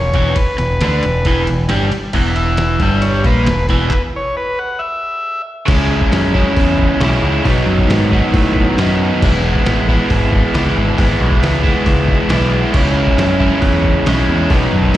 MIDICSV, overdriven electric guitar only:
0, 0, Header, 1, 3, 480
1, 0, Start_track
1, 0, Key_signature, 4, "major"
1, 0, Tempo, 441826
1, 398, Time_signature, 4, 2, 24, 8
1, 16263, End_track
2, 0, Start_track
2, 0, Title_t, "Overdriven electric guitar"
2, 0, Program_c, 0, 29
2, 0, Note_on_c, 0, 40, 74
2, 109, Note_off_c, 0, 40, 0
2, 153, Note_on_c, 0, 40, 93
2, 173, Note_on_c, 0, 52, 105
2, 379, Note_off_c, 0, 40, 0
2, 398, Note_off_c, 0, 52, 0
2, 632, Note_on_c, 0, 40, 78
2, 828, Note_off_c, 0, 40, 0
2, 892, Note_on_c, 0, 50, 97
2, 902, Note_on_c, 0, 62, 98
2, 1120, Note_off_c, 0, 50, 0
2, 1125, Note_off_c, 0, 62, 0
2, 1133, Note_on_c, 0, 40, 74
2, 1320, Note_off_c, 0, 40, 0
2, 1372, Note_on_c, 0, 40, 94
2, 1383, Note_on_c, 0, 52, 114
2, 1593, Note_off_c, 0, 40, 0
2, 1606, Note_off_c, 0, 52, 0
2, 1606, Note_on_c, 0, 40, 68
2, 1797, Note_off_c, 0, 40, 0
2, 1837, Note_on_c, 0, 43, 92
2, 1851, Note_on_c, 0, 55, 103
2, 2074, Note_off_c, 0, 43, 0
2, 2082, Note_off_c, 0, 55, 0
2, 2322, Note_on_c, 0, 40, 86
2, 2333, Note_on_c, 0, 52, 102
2, 3039, Note_off_c, 0, 40, 0
2, 3045, Note_off_c, 0, 52, 0
2, 3052, Note_on_c, 0, 43, 94
2, 3068, Note_on_c, 0, 55, 95
2, 3525, Note_off_c, 0, 43, 0
2, 3531, Note_on_c, 0, 46, 78
2, 3533, Note_off_c, 0, 55, 0
2, 3537, Note_on_c, 0, 58, 105
2, 3761, Note_on_c, 0, 40, 78
2, 3764, Note_off_c, 0, 46, 0
2, 3767, Note_off_c, 0, 58, 0
2, 3959, Note_off_c, 0, 40, 0
2, 4017, Note_on_c, 0, 40, 97
2, 4020, Note_on_c, 0, 52, 120
2, 4248, Note_off_c, 0, 40, 0
2, 4250, Note_off_c, 0, 52, 0
2, 6145, Note_on_c, 0, 49, 84
2, 6159, Note_on_c, 0, 56, 99
2, 6180, Note_on_c, 0, 61, 92
2, 6188, Note_on_c, 0, 64, 96
2, 6868, Note_off_c, 0, 49, 0
2, 6872, Note_off_c, 0, 64, 0
2, 6875, Note_off_c, 0, 56, 0
2, 6885, Note_off_c, 0, 61, 0
2, 6885, Note_on_c, 0, 64, 85
2, 6900, Note_on_c, 0, 61, 85
2, 6913, Note_on_c, 0, 56, 73
2, 6923, Note_on_c, 0, 49, 69
2, 7597, Note_off_c, 0, 49, 0
2, 7598, Note_off_c, 0, 64, 0
2, 7604, Note_off_c, 0, 56, 0
2, 7605, Note_off_c, 0, 61, 0
2, 7610, Note_on_c, 0, 49, 83
2, 7617, Note_on_c, 0, 56, 78
2, 7635, Note_on_c, 0, 61, 90
2, 7649, Note_on_c, 0, 64, 95
2, 8080, Note_off_c, 0, 49, 0
2, 8084, Note_off_c, 0, 56, 0
2, 8088, Note_on_c, 0, 47, 96
2, 8093, Note_off_c, 0, 61, 0
2, 8099, Note_on_c, 0, 51, 93
2, 8100, Note_off_c, 0, 64, 0
2, 8110, Note_on_c, 0, 54, 91
2, 8123, Note_on_c, 0, 59, 99
2, 8127, Note_on_c, 0, 63, 106
2, 8799, Note_off_c, 0, 47, 0
2, 8805, Note_off_c, 0, 51, 0
2, 8806, Note_off_c, 0, 63, 0
2, 8810, Note_off_c, 0, 54, 0
2, 8819, Note_on_c, 0, 63, 83
2, 8825, Note_off_c, 0, 59, 0
2, 8830, Note_on_c, 0, 59, 92
2, 8838, Note_on_c, 0, 54, 76
2, 8854, Note_on_c, 0, 51, 81
2, 8856, Note_on_c, 0, 47, 73
2, 9524, Note_off_c, 0, 63, 0
2, 9534, Note_off_c, 0, 54, 0
2, 9537, Note_off_c, 0, 47, 0
2, 9542, Note_off_c, 0, 51, 0
2, 9550, Note_on_c, 0, 47, 82
2, 9558, Note_on_c, 0, 51, 90
2, 9570, Note_on_c, 0, 54, 88
2, 9572, Note_off_c, 0, 59, 0
2, 9577, Note_on_c, 0, 59, 91
2, 9583, Note_on_c, 0, 63, 91
2, 10007, Note_off_c, 0, 51, 0
2, 10010, Note_off_c, 0, 47, 0
2, 10011, Note_on_c, 0, 52, 91
2, 10020, Note_off_c, 0, 54, 0
2, 10026, Note_off_c, 0, 63, 0
2, 10033, Note_on_c, 0, 56, 100
2, 10035, Note_off_c, 0, 59, 0
2, 10039, Note_on_c, 0, 59, 98
2, 10053, Note_on_c, 0, 64, 107
2, 10734, Note_off_c, 0, 64, 0
2, 10738, Note_on_c, 0, 64, 93
2, 10743, Note_off_c, 0, 59, 0
2, 10747, Note_on_c, 0, 59, 83
2, 10764, Note_off_c, 0, 56, 0
2, 10768, Note_on_c, 0, 56, 80
2, 10772, Note_off_c, 0, 52, 0
2, 10777, Note_on_c, 0, 52, 76
2, 11446, Note_off_c, 0, 59, 0
2, 11451, Note_off_c, 0, 52, 0
2, 11455, Note_on_c, 0, 52, 90
2, 11468, Note_off_c, 0, 56, 0
2, 11473, Note_on_c, 0, 56, 88
2, 11480, Note_on_c, 0, 59, 81
2, 11491, Note_off_c, 0, 64, 0
2, 11495, Note_on_c, 0, 64, 87
2, 11922, Note_off_c, 0, 52, 0
2, 11926, Note_on_c, 0, 52, 94
2, 11933, Note_off_c, 0, 59, 0
2, 11941, Note_off_c, 0, 56, 0
2, 11946, Note_on_c, 0, 56, 95
2, 11957, Note_on_c, 0, 59, 105
2, 11966, Note_off_c, 0, 64, 0
2, 11970, Note_on_c, 0, 64, 113
2, 12641, Note_off_c, 0, 64, 0
2, 12646, Note_off_c, 0, 59, 0
2, 12646, Note_on_c, 0, 64, 91
2, 12659, Note_on_c, 0, 59, 91
2, 12667, Note_off_c, 0, 56, 0
2, 12672, Note_on_c, 0, 56, 86
2, 12682, Note_off_c, 0, 52, 0
2, 12686, Note_on_c, 0, 52, 76
2, 13340, Note_off_c, 0, 52, 0
2, 13353, Note_off_c, 0, 64, 0
2, 13353, Note_on_c, 0, 52, 84
2, 13356, Note_off_c, 0, 56, 0
2, 13359, Note_off_c, 0, 59, 0
2, 13369, Note_on_c, 0, 56, 86
2, 13382, Note_on_c, 0, 59, 96
2, 13388, Note_on_c, 0, 64, 88
2, 13826, Note_off_c, 0, 52, 0
2, 13833, Note_on_c, 0, 49, 80
2, 13834, Note_off_c, 0, 56, 0
2, 13840, Note_off_c, 0, 59, 0
2, 13843, Note_off_c, 0, 64, 0
2, 13850, Note_on_c, 0, 56, 87
2, 13864, Note_on_c, 0, 61, 100
2, 13872, Note_on_c, 0, 64, 105
2, 14531, Note_off_c, 0, 64, 0
2, 14544, Note_off_c, 0, 49, 0
2, 14544, Note_on_c, 0, 64, 84
2, 14549, Note_off_c, 0, 61, 0
2, 14552, Note_off_c, 0, 56, 0
2, 14562, Note_on_c, 0, 61, 87
2, 14573, Note_on_c, 0, 56, 74
2, 14582, Note_on_c, 0, 49, 76
2, 15258, Note_off_c, 0, 64, 0
2, 15267, Note_off_c, 0, 61, 0
2, 15268, Note_off_c, 0, 49, 0
2, 15272, Note_off_c, 0, 56, 0
2, 15281, Note_on_c, 0, 49, 77
2, 15295, Note_on_c, 0, 56, 99
2, 15307, Note_on_c, 0, 61, 90
2, 15317, Note_on_c, 0, 64, 94
2, 15746, Note_off_c, 0, 49, 0
2, 15753, Note_off_c, 0, 56, 0
2, 15755, Note_on_c, 0, 47, 93
2, 15759, Note_off_c, 0, 61, 0
2, 15764, Note_off_c, 0, 64, 0
2, 15769, Note_on_c, 0, 51, 102
2, 15778, Note_on_c, 0, 54, 101
2, 15785, Note_on_c, 0, 59, 98
2, 15797, Note_on_c, 0, 63, 99
2, 16263, Note_off_c, 0, 47, 0
2, 16263, Note_off_c, 0, 51, 0
2, 16263, Note_off_c, 0, 54, 0
2, 16263, Note_off_c, 0, 59, 0
2, 16263, Note_off_c, 0, 63, 0
2, 16263, End_track
3, 0, Start_track
3, 0, Title_t, "Muted overdriven electric guitar strokes"
3, 392, Note_on_c, 9, 29, 54
3, 501, Note_off_c, 9, 29, 0
3, 2090, Note_on_c, 9, 29, 63
3, 2198, Note_off_c, 9, 29, 0
3, 16263, End_track
0, 0, End_of_file